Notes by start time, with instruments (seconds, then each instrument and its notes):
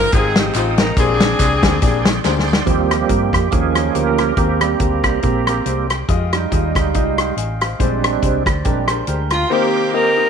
Already playing: tonewheel organ G#4 F5 G5 D#6, saxophone section A#4
0.12 fingered electric bass G#1, upright piano G#3 D#4 F4 G4 C5, saxophone section C4 D#4 G#4, kick, closed hi-hat, tambourine
0.36 saxophone section G4, snare, closed hi-hat, tambourine
0.54 fingered electric bass A1, upright piano G#3 D#4 F4 G4 C5, saxophone section F4, clap, closed hi-hat, tambourine
0.78 saxophone section A#4, snare, closed hi-hat, tambourine
0.97 fingered electric bass A#1, upright piano A#2 A#3 D4 G4 G#4 C5, saxophone section C4 D4 G#4, tonewheel organ D5 C6, kick, closed hi-hat, tambourine
1.20 snare, closed hi-hat, tambourine
1.39 fingered electric bass C2, upright piano A#3 D4 G4 G#4 D5, kick, clap, closed hi-hat, tambourine
1.63 fingered electric bass D2, upright piano A#3 D4 G4 G#4 C5, kick, snare, closed hi-hat, tambourine
1.81 fingered electric bass A#1, upright piano A#3 D4 G4 G#4 D5, kick, closed hi-hat, tambourine
2.05 snare, closed hi-hat, tambourine
2.24 fingered electric bass D2, upright piano A#3 D4 G4 G#4 C5, snare, clap, tambourine
2.39 snare
2.48 tambourine
2.53 snare
2.66 fingered electric bass D#2, upright piano D#3 A#3 D#4 G4 C5, tonewheel organ F3 G3 A#3 C4 G4, woodwind section A#4 C5 D#5 G5, kick, closed hi-hat
2.91 cross-stick, closed hi-hat
3.09 fingered electric bass G2, upright piano A#3 D#4 G4 A#4, kick, closed hi-hat
3.33 fingered electric bass F2, kick, cross-stick, closed hi-hat
3.51 fingered electric bass D#2, upright piano D#3 A#3 D#4 G4 C#5, tonewheel organ F3 A#3 C#4 G#4, woodwind section C#5 G5, kick, closed hi-hat
3.75 upright piano A#3 D#4 G4 C#5, cross-stick, closed hi-hat
3.95 fingered electric bass D2, upright piano A#3 D#4 G4 C5, tonewheel organ C#4 G4 A#4, closed hi-hat
4.18 cross-stick, closed hi-hat
4.37 fingered electric bass D#2, upright piano D#3 G#3 C4 G4 A#4, tonewheel organ A#3 C4 G4, woodwind section C5 G5 A#5, kick, closed hi-hat
4.61 tonewheel organ G3 A#3 C4, cross-stick, closed hi-hat
4.80 fingered electric bass D2, upright piano G#3 C4 G4 A#4, kick, closed hi-hat
5.04 fingered electric bass C2, kick, cross-stick, closed hi-hat
5.22 fingered electric bass A#1, upright piano G#3 C4 G4 A#4, tonewheel organ A#3 C4 G4, kick, closed hi-hat
5.47 upright piano G#3 C4 G4 A#4, cross-stick, closed hi-hat
5.65 fingered electric bass C2, tonewheel organ G3 A#3 C4, upright piano G#3 C4 G4 C5, closed hi-hat
5.90 cross-stick, closed hi-hat
6.09 fingered electric bass F2, upright piano G#3 F4 G4 D#5, woodwind section D#5 F5, kick, closed hi-hat
6.33 tonewheel organ G3 G#3 D#4, cross-stick, closed hi-hat
6.52 fingered electric bass D#2, upright piano G#3 F4 G4 D#5, kick, closed hi-hat
6.75 fingered electric bass D2, kick, cross-stick, closed hi-hat
6.94 fingered electric bass C2, upright piano G#3 F4 G4 D#5, kick, closed hi-hat
7.18 tonewheel organ G3 G#3 D#4, upright piano G5 C6, cross-stick, closed hi-hat
7.37 fingered electric bass A1, upright piano D#5 G#5, closed hi-hat
7.61 upright piano C5 F5, cross-stick, closed hi-hat
7.79 fingered electric bass A#1, upright piano A#2 G#3 D4 G4 C5, tonewheel organ G3 G#3 C4 D4, woodwind section C5 D5, kick, closed hi-hat
8.04 cross-stick, closed hi-hat
8.22 fingered electric bass C2, upright piano G#3 D4 G4 C5, kick, closed hi-hat
8.46 fingered electric bass D2, kick, cross-stick, closed hi-hat
8.65 fingered electric bass A#1, tonewheel organ G3 G#3 C4 D4, upright piano G#3 D4 G4 A#4, clean electric guitar G4, kick, closed hi-hat
8.88 upright piano G#3 D4 G4 A#4, clean electric guitar G#4 C5, cross-stick, closed hi-hat
9.07 fingered electric bass D2, upright piano G#3 D4 G4 C5, clean electric guitar G4 A#4, closed hi-hat
9.30 saxophone section F4, cross-stick, closed hi-hat
9.50 upright piano D#3 A#3 C4 D#4 G4 C5, saxophone section A#3 C4 G4, tonewheel organ A#4 D#5 G5 C6
9.93 upright piano A#3 C4 D#4 G4 D#5, saxophone section G4 A#4
10.16 upright piano A#3 C4 D#4 G4 D#5